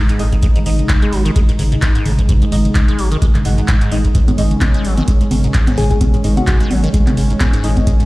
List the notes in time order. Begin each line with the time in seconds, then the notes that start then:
Already playing: D#3 G#3 D#4
0.09 G#2, closed hi-hat
0.19 G#1 A2 G#3 D#4 D#5, open hi-hat
0.32 A2, kick, closed hi-hat
0.43 G#2, kick, closed hi-hat
0.56 G#2, closed hi-hat
0.66 G#1 G#2 G#3 D#4 D#5, open hi-hat
0.79 closed hi-hat, mid tom
0.89 kick, clap, closed hi-hat
1.02 G#3, closed hi-hat
1.12 G#1 F#3, open hi-hat
1.25 D#3, closed hi-hat
1.36 G#3, kick, closed hi-hat
1.49 G#2, closed hi-hat
1.59 G#1 G#2, open hi-hat, mid tom
1.72 G#2, closed hi-hat
1.82 G#2, kick, clap, closed hi-hat
1.95 G#2, closed hi-hat
2.06 G#1 A2, open hi-hat, mid tom
2.19 A2, kick, closed hi-hat, mid tom
2.29 G#2, kick, closed hi-hat
2.42 G#2, closed hi-hat
2.52 G#1 G#2 G#3 D#4 D#5, open hi-hat
2.65 closed hi-hat, mid tom
2.75 kick, clap, closed hi-hat
2.88 G#3, closed hi-hat
2.98 G#1 F#3, open hi-hat
3.12 D#3, closed hi-hat
3.22 G#3, kick, closed hi-hat
3.35 G#2, clap, closed hi-hat, mid tom
3.45 G#1 G#2 G#3 D#4 F#5, open hi-hat
3.58 G#2, closed hi-hat
3.68 G#2, kick, clap, closed hi-hat
3.81 G#2, closed hi-hat
3.91 G#1 A2 G#3 D#4 D#5, open hi-hat
4.04 A2, kick, closed hi-hat
4.15 G#2 C#4, kick, closed hi-hat
4.28 G#2, closed hi-hat, high conga
4.38 G#1 G#2 G#3 D#4 D#5, open hi-hat
4.51 closed hi-hat, mid tom
4.61 kick, clap, closed hi-hat, high conga
4.74 G#3, closed hi-hat
4.85 G#1 F#3, open hi-hat
4.97 D#3, closed hi-hat, high conga
5.08 G#3, kick, closed hi-hat
5.21 G#2, closed hi-hat
5.31 G#1 G#2, open hi-hat, mid tom, high conga
5.44 G#2, closed hi-hat
5.54 G#2, kick, clap, closed hi-hat
5.67 G#2, closed hi-hat, high conga
5.78 G#1 A2 G#4, open hi-hat, mid tom
5.91 G#2 G#4, kick, closed hi-hat, mid tom
6.01 G#2, kick, closed hi-hat, high conga
6.14 G#2, closed hi-hat
6.24 G#1 G#2 G#3 D#4 D#5, open hi-hat
6.37 F#4, closed hi-hat, mid tom, high conga
6.47 F#4, kick, clap, closed hi-hat
6.60 G#3, closed hi-hat
6.71 G#1 F#3, open hi-hat, high conga
6.84 D#3, closed hi-hat
6.94 G#3, kick, closed hi-hat
7.07 G#2, clap, closed hi-hat, mid tom, high conga
7.17 G#1 G#2, open hi-hat
7.30 G#2, closed hi-hat
7.40 G#2, kick, clap, closed hi-hat, high conga
7.53 G#2, closed hi-hat
7.63 G#1 A2 G#3 D#4 D#5, open hi-hat
7.77 G#2, kick, closed hi-hat, high conga
7.87 G#2, kick, closed hi-hat
8.00 G#2, closed hi-hat